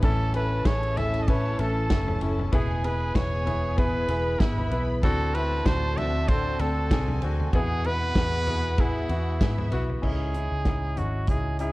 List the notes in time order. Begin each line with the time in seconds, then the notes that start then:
0.02 A1 A2 E3 A3 C#4 E4 A4 A5, kick, ride
0.34 C#4 E4 B4, ride
0.65 A1 C#4 E4 G#4 C#5, kick, snare, ride
0.83 ride
0.97 C#4 E4 A4 E5, floor tom, ride
1.14 ride
1.23 D#5
1.27 C#4 E4 B4 C#5, kick, ride
1.59 A1 C#4 E4 A4, ride
1.90 F#1 C#4 E4 A4, kick, snare, ride
2.08 floor tom
2.21 F#1 C#4 E4 A4, ride
2.39 floor tom
2.52 E1 B2 E3 B3 E4 G#4 G#5, kick, ride
2.84 B3 E4 G#4 B4, ride
3.14 E1 B3 E4 B4 C#5, kick, snare, ride
3.45 B3 E4 G#4, floor tom, ride
3.77 B3 E4 G#4 B4, kick, ride
4.08 E1 B3 E4 G#4 B4 B5, ride
4.40 G#1 B3 E4 B4, kick, snare, ride
4.58 floor tom
4.71 B1 B3 E4 B4, ride
5.03 D2 A2 D3 C4 D4 F#4 A4 A5, kick, ride
5.34 C4 D4 E4 B4, ride
5.65 D2 C4 D4 F#4 C5, kick, snare, ride
5.97 C4 D4 F#4 E5, floor tom, ride
6.28 C4 D4 A4 C5, kick, ride
6.59 D2 C4 D4 A4, ride
6.90 C2 C4 D4 G#4 A4 G#5, kick, snare, ride
7.08 floor tom
7.22 D2 C4 D4 F#4, ride
7.40 floor tom
7.53 E2 B2 E3 B3 E4 F#4 G#4 F#5, kick, ride
7.84 B3 E4 B4, ride
8.15 E2 B3 E4 G#4, kick, snare, ride
8.47 B3 E4 G#4, floor tom, ride
8.78 B3 E4 G#4, kick, ride
9.09 E2 B3 E4 F#4, ride
9.41 G#2 B3 E4 G#4 E5, kick, snare, ride
9.58 floor tom
9.72 B1 B3 E4 F#4, ride
9.89 floor tom
10.02 C#2 G#2 C#4 D#4 E4 G#4, kick, crash
10.34 C#4 D#4 E4, closed hi-hat
10.52 C#2
10.65 C#4 D#4 E4, kick, snare, closed hi-hat
10.97 G#1 C#4 D#4 F#4, closed hi-hat, floor tom
11.27 C#2 C#4 D#4 E4 G#4, kick, closed hi-hat
11.59 C#4 D#4 E4 G#4, closed hi-hat